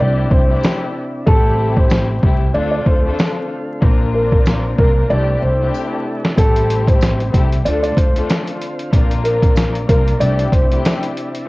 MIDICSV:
0, 0, Header, 1, 6, 480
1, 0, Start_track
1, 0, Tempo, 638298
1, 955, Time_signature, 4, 2, 24, 8
1, 8637, End_track
2, 0, Start_track
2, 0, Title_t, "Upright piano"
2, 0, Program_c, 0, 0
2, 0, Note_on_c, 0, 74, 86
2, 209, Note_off_c, 0, 74, 0
2, 233, Note_on_c, 0, 72, 77
2, 587, Note_off_c, 0, 72, 0
2, 951, Note_on_c, 0, 69, 100
2, 1306, Note_off_c, 0, 69, 0
2, 1335, Note_on_c, 0, 72, 70
2, 1887, Note_off_c, 0, 72, 0
2, 1912, Note_on_c, 0, 74, 79
2, 2030, Note_off_c, 0, 74, 0
2, 2041, Note_on_c, 0, 74, 80
2, 2139, Note_off_c, 0, 74, 0
2, 2159, Note_on_c, 0, 72, 81
2, 2373, Note_off_c, 0, 72, 0
2, 3115, Note_on_c, 0, 70, 72
2, 3566, Note_off_c, 0, 70, 0
2, 3598, Note_on_c, 0, 70, 88
2, 3813, Note_off_c, 0, 70, 0
2, 3834, Note_on_c, 0, 74, 89
2, 4050, Note_off_c, 0, 74, 0
2, 4073, Note_on_c, 0, 72, 77
2, 4427, Note_off_c, 0, 72, 0
2, 4796, Note_on_c, 0, 69, 96
2, 5149, Note_off_c, 0, 69, 0
2, 5166, Note_on_c, 0, 72, 69
2, 5723, Note_off_c, 0, 72, 0
2, 5753, Note_on_c, 0, 74, 73
2, 5874, Note_off_c, 0, 74, 0
2, 5885, Note_on_c, 0, 74, 86
2, 5981, Note_off_c, 0, 74, 0
2, 5993, Note_on_c, 0, 72, 77
2, 6210, Note_off_c, 0, 72, 0
2, 6949, Note_on_c, 0, 70, 79
2, 7403, Note_off_c, 0, 70, 0
2, 7437, Note_on_c, 0, 70, 89
2, 7652, Note_off_c, 0, 70, 0
2, 7673, Note_on_c, 0, 74, 87
2, 7889, Note_off_c, 0, 74, 0
2, 7912, Note_on_c, 0, 72, 74
2, 8267, Note_off_c, 0, 72, 0
2, 8637, End_track
3, 0, Start_track
3, 0, Title_t, "String section"
3, 0, Program_c, 1, 48
3, 0, Note_on_c, 1, 57, 98
3, 0, Note_on_c, 1, 60, 88
3, 0, Note_on_c, 1, 62, 91
3, 0, Note_on_c, 1, 64, 89
3, 0, Note_on_c, 1, 67, 113
3, 326, Note_off_c, 1, 57, 0
3, 329, Note_off_c, 1, 60, 0
3, 332, Note_off_c, 1, 62, 0
3, 335, Note_off_c, 1, 64, 0
3, 338, Note_off_c, 1, 67, 0
3, 355, Note_on_c, 1, 57, 91
3, 361, Note_on_c, 1, 60, 88
3, 366, Note_on_c, 1, 62, 92
3, 371, Note_on_c, 1, 64, 96
3, 378, Note_on_c, 1, 67, 111
3, 799, Note_off_c, 1, 57, 0
3, 802, Note_off_c, 1, 60, 0
3, 805, Note_off_c, 1, 62, 0
3, 807, Note_off_c, 1, 64, 0
3, 811, Note_off_c, 1, 67, 0
3, 947, Note_on_c, 1, 57, 98
3, 951, Note_on_c, 1, 55, 93
3, 957, Note_on_c, 1, 60, 97
3, 962, Note_on_c, 1, 64, 97
3, 969, Note_on_c, 1, 67, 103
3, 1621, Note_off_c, 1, 57, 0
3, 1623, Note_off_c, 1, 55, 0
3, 1626, Note_off_c, 1, 60, 0
3, 1629, Note_off_c, 1, 64, 0
3, 1632, Note_off_c, 1, 67, 0
3, 1656, Note_on_c, 1, 57, 95
3, 1662, Note_on_c, 1, 55, 94
3, 1667, Note_on_c, 1, 60, 85
3, 1672, Note_on_c, 1, 64, 100
3, 1678, Note_on_c, 1, 67, 106
3, 1889, Note_off_c, 1, 57, 0
3, 1896, Note_off_c, 1, 60, 0
3, 1898, Note_on_c, 1, 57, 108
3, 1905, Note_on_c, 1, 60, 87
3, 1909, Note_off_c, 1, 55, 0
3, 1911, Note_on_c, 1, 62, 99
3, 1913, Note_off_c, 1, 64, 0
3, 1916, Note_off_c, 1, 67, 0
3, 1916, Note_on_c, 1, 65, 85
3, 1921, Note_on_c, 1, 69, 111
3, 2250, Note_off_c, 1, 57, 0
3, 2253, Note_off_c, 1, 60, 0
3, 2256, Note_off_c, 1, 62, 0
3, 2258, Note_off_c, 1, 65, 0
3, 2261, Note_off_c, 1, 69, 0
3, 2280, Note_on_c, 1, 57, 101
3, 2286, Note_on_c, 1, 60, 82
3, 2291, Note_on_c, 1, 62, 88
3, 2297, Note_on_c, 1, 65, 89
3, 2302, Note_on_c, 1, 69, 113
3, 2605, Note_off_c, 1, 57, 0
3, 2607, Note_off_c, 1, 60, 0
3, 2610, Note_off_c, 1, 62, 0
3, 2613, Note_off_c, 1, 65, 0
3, 2616, Note_off_c, 1, 69, 0
3, 2867, Note_on_c, 1, 58, 113
3, 2873, Note_on_c, 1, 60, 95
3, 2879, Note_on_c, 1, 62, 98
3, 2885, Note_on_c, 1, 65, 97
3, 2890, Note_on_c, 1, 70, 109
3, 3541, Note_off_c, 1, 58, 0
3, 3544, Note_off_c, 1, 60, 0
3, 3547, Note_off_c, 1, 62, 0
3, 3550, Note_off_c, 1, 65, 0
3, 3552, Note_off_c, 1, 70, 0
3, 3577, Note_on_c, 1, 58, 94
3, 3582, Note_on_c, 1, 60, 91
3, 3588, Note_on_c, 1, 62, 89
3, 3594, Note_on_c, 1, 65, 92
3, 3599, Note_on_c, 1, 70, 108
3, 3809, Note_off_c, 1, 60, 0
3, 3813, Note_on_c, 1, 57, 100
3, 3815, Note_off_c, 1, 62, 0
3, 3818, Note_on_c, 1, 60, 86
3, 3824, Note_on_c, 1, 62, 86
3, 3826, Note_off_c, 1, 58, 0
3, 3830, Note_on_c, 1, 64, 86
3, 3834, Note_off_c, 1, 65, 0
3, 3835, Note_on_c, 1, 67, 114
3, 3837, Note_off_c, 1, 70, 0
3, 4167, Note_off_c, 1, 57, 0
3, 4169, Note_off_c, 1, 60, 0
3, 4172, Note_off_c, 1, 62, 0
3, 4175, Note_off_c, 1, 64, 0
3, 4178, Note_off_c, 1, 67, 0
3, 4195, Note_on_c, 1, 57, 88
3, 4201, Note_on_c, 1, 60, 84
3, 4207, Note_on_c, 1, 62, 89
3, 4213, Note_on_c, 1, 64, 93
3, 4218, Note_on_c, 1, 67, 112
3, 4640, Note_off_c, 1, 57, 0
3, 4642, Note_off_c, 1, 60, 0
3, 4645, Note_off_c, 1, 62, 0
3, 4648, Note_off_c, 1, 64, 0
3, 4651, Note_off_c, 1, 67, 0
3, 4786, Note_on_c, 1, 57, 98
3, 4791, Note_on_c, 1, 55, 89
3, 4798, Note_on_c, 1, 60, 100
3, 4803, Note_on_c, 1, 64, 93
3, 4808, Note_on_c, 1, 67, 106
3, 5460, Note_off_c, 1, 57, 0
3, 5463, Note_off_c, 1, 55, 0
3, 5466, Note_off_c, 1, 60, 0
3, 5469, Note_off_c, 1, 64, 0
3, 5471, Note_off_c, 1, 67, 0
3, 5497, Note_on_c, 1, 57, 97
3, 5502, Note_on_c, 1, 55, 92
3, 5508, Note_on_c, 1, 60, 85
3, 5514, Note_on_c, 1, 64, 100
3, 5519, Note_on_c, 1, 67, 105
3, 5732, Note_off_c, 1, 57, 0
3, 5737, Note_off_c, 1, 60, 0
3, 5741, Note_on_c, 1, 57, 101
3, 5746, Note_on_c, 1, 60, 85
3, 5748, Note_off_c, 1, 55, 0
3, 5752, Note_on_c, 1, 62, 99
3, 5754, Note_off_c, 1, 64, 0
3, 5757, Note_off_c, 1, 67, 0
3, 5757, Note_on_c, 1, 65, 84
3, 5764, Note_on_c, 1, 69, 112
3, 6091, Note_off_c, 1, 57, 0
3, 6093, Note_off_c, 1, 60, 0
3, 6097, Note_off_c, 1, 62, 0
3, 6099, Note_off_c, 1, 65, 0
3, 6102, Note_off_c, 1, 69, 0
3, 6118, Note_on_c, 1, 57, 106
3, 6124, Note_on_c, 1, 60, 82
3, 6130, Note_on_c, 1, 62, 88
3, 6136, Note_on_c, 1, 65, 87
3, 6141, Note_on_c, 1, 69, 104
3, 6444, Note_off_c, 1, 57, 0
3, 6447, Note_off_c, 1, 60, 0
3, 6449, Note_off_c, 1, 62, 0
3, 6452, Note_off_c, 1, 65, 0
3, 6455, Note_off_c, 1, 69, 0
3, 6709, Note_on_c, 1, 58, 111
3, 6715, Note_on_c, 1, 60, 94
3, 6720, Note_on_c, 1, 62, 94
3, 6726, Note_on_c, 1, 65, 97
3, 6732, Note_on_c, 1, 70, 108
3, 7382, Note_off_c, 1, 58, 0
3, 7385, Note_off_c, 1, 60, 0
3, 7387, Note_off_c, 1, 62, 0
3, 7390, Note_off_c, 1, 65, 0
3, 7393, Note_off_c, 1, 70, 0
3, 7416, Note_on_c, 1, 58, 95
3, 7422, Note_on_c, 1, 60, 90
3, 7426, Note_on_c, 1, 62, 90
3, 7432, Note_on_c, 1, 65, 96
3, 7438, Note_on_c, 1, 70, 108
3, 7648, Note_off_c, 1, 60, 0
3, 7651, Note_on_c, 1, 57, 97
3, 7653, Note_off_c, 1, 62, 0
3, 7657, Note_on_c, 1, 60, 90
3, 7662, Note_on_c, 1, 62, 91
3, 7665, Note_off_c, 1, 58, 0
3, 7668, Note_on_c, 1, 64, 89
3, 7673, Note_off_c, 1, 65, 0
3, 7674, Note_on_c, 1, 67, 114
3, 7676, Note_off_c, 1, 70, 0
3, 8006, Note_off_c, 1, 57, 0
3, 8009, Note_off_c, 1, 60, 0
3, 8012, Note_off_c, 1, 62, 0
3, 8014, Note_off_c, 1, 64, 0
3, 8017, Note_off_c, 1, 67, 0
3, 8036, Note_on_c, 1, 57, 88
3, 8040, Note_on_c, 1, 60, 85
3, 8046, Note_on_c, 1, 62, 86
3, 8052, Note_on_c, 1, 64, 91
3, 8057, Note_on_c, 1, 67, 113
3, 8480, Note_off_c, 1, 57, 0
3, 8482, Note_off_c, 1, 60, 0
3, 8485, Note_off_c, 1, 62, 0
3, 8488, Note_off_c, 1, 64, 0
3, 8490, Note_off_c, 1, 67, 0
3, 8637, End_track
4, 0, Start_track
4, 0, Title_t, "Tonewheel organ"
4, 0, Program_c, 2, 16
4, 0, Note_on_c, 2, 48, 70
4, 0, Note_on_c, 2, 62, 77
4, 0, Note_on_c, 2, 64, 90
4, 938, Note_off_c, 2, 62, 0
4, 946, Note_off_c, 2, 64, 0
4, 947, Note_off_c, 2, 48, 0
4, 964, Note_on_c, 2, 48, 69
4, 964, Note_on_c, 2, 55, 74
4, 1910, Note_off_c, 2, 48, 0
4, 1910, Note_off_c, 2, 55, 0
4, 1931, Note_on_c, 2, 50, 70
4, 1931, Note_on_c, 2, 65, 78
4, 1932, Note_on_c, 2, 57, 65
4, 1932, Note_on_c, 2, 60, 67
4, 2862, Note_off_c, 2, 60, 0
4, 2871, Note_on_c, 2, 58, 63
4, 2871, Note_on_c, 2, 60, 73
4, 2871, Note_on_c, 2, 62, 78
4, 2873, Note_off_c, 2, 50, 0
4, 2873, Note_off_c, 2, 65, 0
4, 2874, Note_off_c, 2, 57, 0
4, 3823, Note_off_c, 2, 58, 0
4, 3823, Note_off_c, 2, 60, 0
4, 3844, Note_on_c, 2, 64, 78
4, 3846, Note_on_c, 2, 48, 74
4, 3847, Note_on_c, 2, 57, 69
4, 4768, Note_off_c, 2, 48, 0
4, 4773, Note_off_c, 2, 62, 0
4, 4777, Note_on_c, 2, 48, 72
4, 4778, Note_on_c, 2, 55, 67
4, 4790, Note_off_c, 2, 64, 0
4, 4791, Note_off_c, 2, 57, 0
4, 5736, Note_off_c, 2, 48, 0
4, 5737, Note_off_c, 2, 55, 0
4, 5755, Note_on_c, 2, 65, 78
4, 5756, Note_on_c, 2, 50, 65
4, 5757, Note_on_c, 2, 60, 72
4, 6705, Note_off_c, 2, 65, 0
4, 6706, Note_off_c, 2, 50, 0
4, 6706, Note_off_c, 2, 60, 0
4, 6722, Note_on_c, 2, 62, 76
4, 6724, Note_on_c, 2, 58, 67
4, 7670, Note_off_c, 2, 58, 0
4, 7676, Note_on_c, 2, 64, 87
4, 7678, Note_on_c, 2, 48, 72
4, 8619, Note_off_c, 2, 62, 0
4, 8626, Note_off_c, 2, 64, 0
4, 8627, Note_off_c, 2, 48, 0
4, 8637, End_track
5, 0, Start_track
5, 0, Title_t, "Upright bass"
5, 0, Program_c, 3, 32
5, 0, Note_on_c, 3, 36, 115
5, 191, Note_off_c, 3, 36, 0
5, 232, Note_on_c, 3, 36, 94
5, 430, Note_off_c, 3, 36, 0
5, 954, Note_on_c, 3, 33, 117
5, 1644, Note_off_c, 3, 33, 0
5, 1677, Note_on_c, 3, 36, 94
5, 1873, Note_off_c, 3, 36, 0
5, 1914, Note_on_c, 3, 38, 113
5, 2111, Note_off_c, 3, 38, 0
5, 2152, Note_on_c, 3, 38, 92
5, 2350, Note_off_c, 3, 38, 0
5, 2873, Note_on_c, 3, 34, 105
5, 3564, Note_off_c, 3, 34, 0
5, 3597, Note_on_c, 3, 36, 95
5, 3792, Note_off_c, 3, 36, 0
5, 3836, Note_on_c, 3, 36, 114
5, 4032, Note_off_c, 3, 36, 0
5, 4075, Note_on_c, 3, 36, 93
5, 4271, Note_off_c, 3, 36, 0
5, 4794, Note_on_c, 3, 33, 117
5, 5484, Note_off_c, 3, 33, 0
5, 5518, Note_on_c, 3, 36, 94
5, 5713, Note_off_c, 3, 36, 0
5, 5755, Note_on_c, 3, 38, 111
5, 5951, Note_off_c, 3, 38, 0
5, 5993, Note_on_c, 3, 38, 95
5, 6190, Note_off_c, 3, 38, 0
5, 6713, Note_on_c, 3, 34, 100
5, 7404, Note_off_c, 3, 34, 0
5, 7438, Note_on_c, 3, 36, 97
5, 7633, Note_off_c, 3, 36, 0
5, 7674, Note_on_c, 3, 36, 114
5, 7871, Note_off_c, 3, 36, 0
5, 7912, Note_on_c, 3, 36, 91
5, 8110, Note_off_c, 3, 36, 0
5, 8637, End_track
6, 0, Start_track
6, 0, Title_t, "Drums"
6, 232, Note_on_c, 9, 36, 96
6, 308, Note_off_c, 9, 36, 0
6, 476, Note_on_c, 9, 54, 65
6, 485, Note_on_c, 9, 38, 119
6, 552, Note_off_c, 9, 54, 0
6, 560, Note_off_c, 9, 38, 0
6, 954, Note_on_c, 9, 36, 113
6, 1029, Note_off_c, 9, 36, 0
6, 1329, Note_on_c, 9, 36, 99
6, 1404, Note_off_c, 9, 36, 0
6, 1429, Note_on_c, 9, 54, 70
6, 1440, Note_on_c, 9, 38, 105
6, 1504, Note_off_c, 9, 54, 0
6, 1515, Note_off_c, 9, 38, 0
6, 1677, Note_on_c, 9, 36, 96
6, 1753, Note_off_c, 9, 36, 0
6, 2152, Note_on_c, 9, 36, 95
6, 2227, Note_off_c, 9, 36, 0
6, 2397, Note_on_c, 9, 54, 63
6, 2405, Note_on_c, 9, 38, 126
6, 2472, Note_off_c, 9, 54, 0
6, 2481, Note_off_c, 9, 38, 0
6, 2873, Note_on_c, 9, 36, 112
6, 2948, Note_off_c, 9, 36, 0
6, 3249, Note_on_c, 9, 36, 104
6, 3324, Note_off_c, 9, 36, 0
6, 3351, Note_on_c, 9, 54, 73
6, 3360, Note_on_c, 9, 38, 103
6, 3426, Note_off_c, 9, 54, 0
6, 3436, Note_off_c, 9, 38, 0
6, 3597, Note_on_c, 9, 36, 98
6, 3672, Note_off_c, 9, 36, 0
6, 4317, Note_on_c, 9, 54, 61
6, 4392, Note_off_c, 9, 54, 0
6, 4698, Note_on_c, 9, 38, 97
6, 4773, Note_off_c, 9, 38, 0
6, 4794, Note_on_c, 9, 36, 111
6, 4799, Note_on_c, 9, 42, 90
6, 4869, Note_off_c, 9, 36, 0
6, 4875, Note_off_c, 9, 42, 0
6, 4934, Note_on_c, 9, 42, 56
6, 5009, Note_off_c, 9, 42, 0
6, 5040, Note_on_c, 9, 42, 78
6, 5115, Note_off_c, 9, 42, 0
6, 5170, Note_on_c, 9, 36, 99
6, 5176, Note_on_c, 9, 42, 52
6, 5245, Note_off_c, 9, 36, 0
6, 5251, Note_off_c, 9, 42, 0
6, 5272, Note_on_c, 9, 54, 71
6, 5282, Note_on_c, 9, 42, 82
6, 5284, Note_on_c, 9, 38, 100
6, 5347, Note_off_c, 9, 54, 0
6, 5358, Note_off_c, 9, 42, 0
6, 5359, Note_off_c, 9, 38, 0
6, 5417, Note_on_c, 9, 42, 51
6, 5492, Note_off_c, 9, 42, 0
6, 5518, Note_on_c, 9, 36, 97
6, 5521, Note_on_c, 9, 42, 76
6, 5594, Note_off_c, 9, 36, 0
6, 5596, Note_off_c, 9, 42, 0
6, 5658, Note_on_c, 9, 42, 52
6, 5734, Note_off_c, 9, 42, 0
6, 5759, Note_on_c, 9, 42, 94
6, 5834, Note_off_c, 9, 42, 0
6, 5893, Note_on_c, 9, 42, 56
6, 5968, Note_off_c, 9, 42, 0
6, 5993, Note_on_c, 9, 36, 95
6, 6000, Note_on_c, 9, 42, 78
6, 6068, Note_off_c, 9, 36, 0
6, 6075, Note_off_c, 9, 42, 0
6, 6137, Note_on_c, 9, 42, 52
6, 6212, Note_off_c, 9, 42, 0
6, 6237, Note_on_c, 9, 54, 64
6, 6239, Note_on_c, 9, 42, 88
6, 6245, Note_on_c, 9, 38, 122
6, 6313, Note_off_c, 9, 54, 0
6, 6315, Note_off_c, 9, 42, 0
6, 6321, Note_off_c, 9, 38, 0
6, 6373, Note_on_c, 9, 42, 53
6, 6448, Note_off_c, 9, 42, 0
6, 6479, Note_on_c, 9, 42, 63
6, 6554, Note_off_c, 9, 42, 0
6, 6612, Note_on_c, 9, 42, 55
6, 6687, Note_off_c, 9, 42, 0
6, 6713, Note_on_c, 9, 36, 111
6, 6718, Note_on_c, 9, 42, 88
6, 6788, Note_off_c, 9, 36, 0
6, 6793, Note_off_c, 9, 42, 0
6, 6852, Note_on_c, 9, 42, 55
6, 6927, Note_off_c, 9, 42, 0
6, 6957, Note_on_c, 9, 42, 74
6, 7032, Note_off_c, 9, 42, 0
6, 7088, Note_on_c, 9, 36, 102
6, 7092, Note_on_c, 9, 42, 53
6, 7164, Note_off_c, 9, 36, 0
6, 7167, Note_off_c, 9, 42, 0
6, 7190, Note_on_c, 9, 54, 69
6, 7199, Note_on_c, 9, 42, 84
6, 7201, Note_on_c, 9, 38, 103
6, 7265, Note_off_c, 9, 54, 0
6, 7275, Note_off_c, 9, 42, 0
6, 7276, Note_off_c, 9, 38, 0
6, 7335, Note_on_c, 9, 42, 51
6, 7410, Note_off_c, 9, 42, 0
6, 7438, Note_on_c, 9, 36, 100
6, 7439, Note_on_c, 9, 42, 76
6, 7513, Note_off_c, 9, 36, 0
6, 7514, Note_off_c, 9, 42, 0
6, 7578, Note_on_c, 9, 42, 51
6, 7654, Note_off_c, 9, 42, 0
6, 7678, Note_on_c, 9, 42, 92
6, 7753, Note_off_c, 9, 42, 0
6, 7813, Note_on_c, 9, 42, 56
6, 7888, Note_off_c, 9, 42, 0
6, 7912, Note_on_c, 9, 36, 98
6, 7918, Note_on_c, 9, 42, 80
6, 7988, Note_off_c, 9, 36, 0
6, 7993, Note_off_c, 9, 42, 0
6, 8057, Note_on_c, 9, 42, 50
6, 8133, Note_off_c, 9, 42, 0
6, 8158, Note_on_c, 9, 54, 64
6, 8159, Note_on_c, 9, 42, 90
6, 8165, Note_on_c, 9, 38, 125
6, 8233, Note_off_c, 9, 54, 0
6, 8235, Note_off_c, 9, 42, 0
6, 8240, Note_off_c, 9, 38, 0
6, 8293, Note_on_c, 9, 42, 55
6, 8368, Note_off_c, 9, 42, 0
6, 8401, Note_on_c, 9, 42, 67
6, 8476, Note_off_c, 9, 42, 0
6, 8533, Note_on_c, 9, 42, 54
6, 8608, Note_off_c, 9, 42, 0
6, 8637, End_track
0, 0, End_of_file